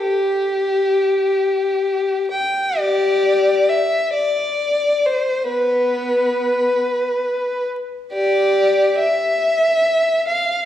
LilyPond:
\new Staff \with { instrumentName = "Violin" } { \time 6/8 \key g \major \tempo 4. = 45 << { g'2~ g'8 g''8 | d''4 e''8 d''4 c''8 | b'2~ b'8 r8 | d''4 e''4. f''8 | } \\ { r2. | g'4 r2 | b4. r4. | g'4 r2 | } >> }